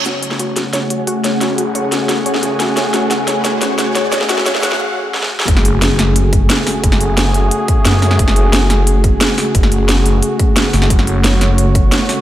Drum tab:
HH |x-x-x-x-x-x-x-x-|x-x-x-x-x-x-x-x-|x-x-x-x-x-x-x-x-|x-x-x-x---------|
SD |o--o--o-o-----o-|o-----o-o--o--o-|o-o-o-o-o-o-o-o-|oooooooo----oo-o|
BD |----------------|----------------|----------------|----------------|

HH |x-x-x-x-x-x-x-o-|x-x-x-x-x-x-x-o-|x-x-x-x-x-x-x-o-|x-x-x-x-x-x-x-o-|
SD |-o--o-o-----o-o-|-o--o-------o-oo|-o--o-o-----o-o-|-o--o-------o-oo|
BD |o---------o-----|o---------o-----|o---------o-----|o---------o-----|

HH |x-x-x-x-x-x-x-o-|
SD |-o--o-o-----o-o-|
BD |o---------o-----|